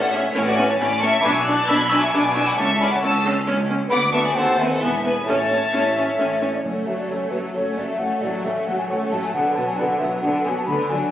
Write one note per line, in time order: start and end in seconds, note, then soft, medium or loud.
0.00 0.29 A1 loud
0.00 0.26 A2 medium
0.00 0.29 A2 loud
0.00 1.17 C#4 medium
0.00 1.18 E4 medium
0.00 0.11 A4 medium
0.00 1.19 C#5 medium
0.00 0.11 F#5 loud
0.10 0.21 C#4 medium
0.10 0.20 G#4 medium
0.10 0.34 C#5 medium
0.10 0.33 E5 loud
0.32 0.74 A1 loud
0.32 0.70 A2 medium
0.32 0.73 A2 loud
0.32 0.43 C#4 medium
0.32 0.39 E4 loud
0.32 0.42 A4 loud
0.32 0.37 C#5 loud
0.43 0.56 F#4 loud
0.43 0.56 B4 medium
0.43 0.56 D5 loud
0.54 0.65 C#4 medium
0.54 0.68 B4 loud
0.54 0.65 E5 medium
0.54 0.67 G#5 loud
0.66 0.79 C#5 medium
0.66 0.71 F#5 medium
0.66 0.79 A5 medium
0.78 1.18 A1 loud
0.78 1.19 A2 loud
0.78 1.15 A2 medium
0.78 0.88 C#4 medium
0.78 1.01 D5 loud
0.78 1.02 G#5 loud
0.78 0.86 B5 loud
1.00 1.10 C#4 medium
1.00 1.24 E5 loud
1.00 1.23 A5 loud
1.00 1.23 C#6 loud
1.19 2.51 D4 medium
1.19 2.52 E4 medium
1.19 2.53 B4 medium
1.19 1.33 B5 loud
1.19 1.34 D6 loud
1.23 1.63 B1 loud
1.23 1.60 B2 medium
1.23 1.63 B2 medium
1.23 1.33 D4 medium
1.23 1.35 G#5 loud
1.33 1.47 G#5 medium
1.33 1.46 C#6 loud
1.33 1.46 E6 loud
1.44 1.55 D4 medium
1.44 1.67 D6 loud
1.44 1.68 F#6 loud
1.49 1.69 A5 loud
1.66 2.07 B1 loud
1.66 2.04 B2 medium
1.66 2.08 B2 loud
1.66 1.77 D4 medium
1.66 1.91 B5 loud
1.66 1.91 E6 loud
1.66 1.90 G#6 loud
1.89 2.00 D4 medium
1.89 2.03 G#5 loud
1.89 2.01 C#6 loud
1.89 2.01 E6 loud
2.00 2.13 E5 loud
2.00 2.14 A5 medium
2.00 2.13 C#6 loud
2.12 2.52 B1 medium
2.12 2.49 B2 medium
2.12 2.53 B2 loud
2.12 2.22 D4 medium
2.12 2.34 G#5 medium
2.12 2.36 B5 loud
2.12 2.35 D6 loud
2.34 2.44 D4 medium
2.34 2.46 G#5 loud
2.34 2.45 C#6 loud
2.34 2.46 E6 loud
2.46 2.57 F#5 medium
2.46 2.56 B5 loud
2.46 2.58 D6 loud
2.53 3.85 C#4 medium
2.53 3.86 E4 medium
2.53 3.87 A4 medium
2.53 2.79 E5 loud
2.53 2.79 A5 loud
2.53 2.79 C#6 loud
2.57 2.97 C#2 loud
2.57 2.67 C#4 medium
2.79 2.89 C#4 medium
2.79 2.92 D5 loud
2.79 2.90 G#5 medium
2.79 2.91 B5 loud
2.91 3.03 C#5 medium
2.91 3.01 F#5 loud
2.91 2.97 A5 medium
3.02 3.42 C#2 loud
3.02 3.11 C#4 medium
3.02 3.24 A5 loud
3.02 3.24 C#6 loud
3.02 3.24 E6 loud
3.26 3.34 C#4 medium
3.46 3.86 C#2 loud
3.46 3.87 C#2 medium
3.46 3.56 C#4 medium
3.70 3.78 C#4 medium
3.88 4.31 D2 medium
3.88 4.31 D2 loud
3.88 4.32 B3 medium
3.88 4.33 F#4 medium
3.88 4.35 B4 medium
3.88 3.96 B5 loud
3.88 4.12 D6 loud
3.92 4.29 D2 medium
3.92 4.01 B3 medium
3.92 4.00 F#5 loud
4.12 4.23 B3 medium
4.12 4.25 E5 loud
4.12 4.24 A5 medium
4.12 4.25 C#6 loud
4.25 4.29 D5 medium
4.25 4.37 G#5 loud
4.25 4.31 B5 medium
4.32 4.76 D#2 loud
4.32 4.77 D#2 medium
4.32 4.77 C4 medium
4.32 4.79 F#4 medium
4.32 4.80 A4 medium
4.32 4.60 F#5 loud
4.32 4.59 A5 loud
4.37 4.74 D#2 medium
4.37 4.45 C4 medium
4.37 4.59 C5 loud
4.59 4.68 C4 medium
4.59 4.71 B4 medium
4.59 4.69 E5 medium
4.59 4.71 G#5 medium
4.70 4.83 A4 medium
4.70 4.75 D#5 medium
4.70 4.83 F#5 medium
4.77 5.23 B3 soft
4.77 5.23 E4 medium
4.77 5.26 G#4 medium
4.77 5.02 G#5 medium
4.77 4.89 B5 medium
4.82 5.22 E1 medium
4.82 5.19 E2 medium
4.82 5.22 E2 medium
4.82 4.91 B3 medium
4.82 5.05 E5 medium
5.03 5.14 B3 medium
5.03 5.13 B4 medium
5.03 5.09 E5 medium
5.03 5.27 G#5 medium
5.23 5.68 A2 medium
5.23 6.59 C#4 medium
5.23 6.59 E4 medium
5.23 6.60 A4 medium
5.23 6.40 C#5 medium
5.23 6.38 E5 medium
5.27 5.68 A1 medium
5.27 5.65 A2 medium
5.27 5.36 C#4 medium
5.27 6.40 A5 loud
5.51 5.59 C#4 medium
5.73 6.14 A1 medium
5.73 6.14 A2 medium
5.73 6.11 A2 medium
5.73 5.81 C#4 medium
5.96 6.04 C#4 medium
6.18 6.59 A1 medium
6.18 6.56 A2 medium
6.18 6.60 A2 medium
6.18 6.27 C#4 medium
6.40 6.50 C#4 medium
6.40 6.52 E5 medium
6.54 6.63 D5 medium
6.63 6.72 F#1 soft
6.63 6.85 F#2 soft
6.63 6.73 F#2 soft
6.63 6.86 A3 soft
6.63 6.86 C#4 soft
6.63 6.86 F#4 soft
6.63 6.69 C#5 medium
6.86 6.95 F#1 soft
6.86 7.07 F#2 soft
6.86 6.95 F#2 soft
6.86 7.10 F#3 soft
6.86 7.10 A3 soft
6.86 7.10 A4 soft
6.86 6.92 E5 medium
6.97 7.10 D5 medium
7.09 7.17 F#1 soft
7.09 7.30 F#2 soft
7.09 7.17 F#2 soft
7.09 7.33 A3 soft
7.09 7.51 C#4 soft
7.09 7.33 C#4 soft
7.09 7.32 F#4 soft
7.09 7.51 F#4 soft
7.09 7.51 A4 soft
7.09 7.30 C#5 medium
7.30 7.40 F#1 soft
7.30 7.40 F#2 soft
7.30 7.52 F#2 soft
7.30 7.55 F#3 soft
7.30 7.56 A3 soft
7.30 7.54 A4 soft
7.30 7.36 B4 soft
7.54 7.62 F#1 soft
7.54 7.62 F#2 soft
7.54 7.75 F#2 soft
7.54 7.76 A3 soft
7.54 7.96 C#4 soft
7.54 7.77 C#4 soft
7.54 7.75 F#4 soft
7.54 7.96 F#4 soft
7.54 7.96 A4 soft
7.54 7.78 C#5 medium
7.77 7.85 F#1 soft
7.77 7.85 F#2 soft
7.77 7.97 F#2 soft
7.77 8.00 F#3 soft
7.77 8.01 A3 soft
7.77 7.97 A4 soft
7.77 7.88 D5 medium
7.89 8.01 E5 medium
7.99 8.07 A1 soft
7.99 8.07 A2 soft
7.99 8.20 A2 soft
7.99 8.21 A3 soft
7.99 8.21 C#4 soft
7.99 8.20 A4 soft
7.99 8.23 F#5 medium
8.21 8.29 A1 soft
8.21 8.30 A2 soft
8.21 8.43 A2 soft
8.21 8.45 F#3 soft
8.21 8.45 A3 soft
8.21 8.44 F#4 soft
8.21 8.46 D5 medium
8.43 8.52 A1 soft
8.43 8.52 A2 soft
8.43 8.65 A2 soft
8.43 8.67 A3 soft
8.43 8.67 C#4 soft
8.43 8.86 C#4 soft
8.43 8.86 F#4 soft
8.43 8.66 A4 soft
8.43 8.86 C#5 soft
8.43 8.67 E5 medium
8.66 8.74 A1 soft
8.66 8.75 A2 soft
8.66 8.87 A2 soft
8.66 8.90 F#3 soft
8.66 8.89 A3 soft
8.66 8.89 F#4 soft
8.66 8.78 F#5 medium
8.78 8.83 G#5 medium
8.89 8.97 A1 soft
8.89 8.97 A2 soft
8.89 9.10 A2 soft
8.89 9.10 A3 soft
8.89 9.10 C#4 soft
8.89 9.30 C#4 soft
8.89 9.30 F#4 soft
8.89 9.10 A4 soft
8.89 9.31 C#5 soft
8.89 8.95 F#5 medium
9.11 9.19 A1 soft
9.11 9.20 A2 soft
9.11 9.32 A2 soft
9.11 9.34 F#3 soft
9.11 9.34 A3 soft
9.11 9.34 F#4 soft
9.11 9.22 A5 medium
9.23 9.33 G#5 medium
9.33 9.41 B1 medium
9.33 9.42 B2 medium
9.33 9.54 B2 soft
9.33 9.55 D3 soft
9.33 9.56 D4 soft
9.33 9.54 B4 soft
9.33 9.54 F#5 medium
9.54 9.64 B1 soft
9.54 9.76 B2 soft
9.54 9.64 B2 soft
9.54 9.79 F#3 soft
9.54 9.78 B3 soft
9.54 9.79 F#4 soft
9.54 9.69 A5 medium
9.68 9.79 G#5 medium
9.77 9.86 B1 medium
9.77 9.86 B2 soft
9.77 9.98 B2 soft
9.77 10.01 D3 soft
9.77 10.01 D4 soft
9.77 10.19 D4 soft
9.77 10.19 F#4 soft
9.77 10.19 B4 soft
9.77 10.01 B4 soft
9.77 9.98 F#5 medium
9.99 10.08 B1 soft
9.99 10.08 B2 soft
9.99 10.21 B2 soft
9.99 10.23 F#3 soft
9.99 10.23 B3 soft
9.99 10.23 F#4 soft
9.99 10.05 E5 medium
10.22 10.31 B1 soft
10.22 10.30 B2 medium
10.22 10.44 B2 soft
10.22 10.44 D3 soft
10.22 10.44 D4 soft
10.22 10.64 D4 soft
10.22 10.64 F#4 soft
10.22 10.44 B4 soft
10.22 10.65 B4 soft
10.22 10.46 F#5 medium
10.44 10.53 B1 soft
10.44 10.53 B2 soft
10.44 10.65 B2 soft
10.44 10.68 F#3 soft
10.44 10.65 B3 soft
10.44 10.68 F#4 soft
10.44 10.56 G#5 medium
10.58 10.63 A5 medium
10.66 10.76 D2 medium
10.66 10.75 D3 medium
10.66 10.88 D3 soft
10.66 10.89 D3 soft
10.66 10.88 B3 soft
10.66 10.89 D4 soft
10.66 10.88 B5 medium
10.89 10.97 D2 soft
10.89 10.97 D3 medium
10.89 11.10 D3 soft
10.89 11.11 F#3 soft
10.89 11.11 D4 soft
10.89 11.11 F#4 soft
10.89 11.11 G#5 medium